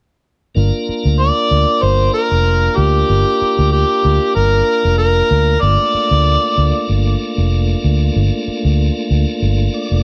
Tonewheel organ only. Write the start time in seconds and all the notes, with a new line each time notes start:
0.55 A#3 D4 F4 A#4
5.61 A3 A#3 D4 F4
9.74 D5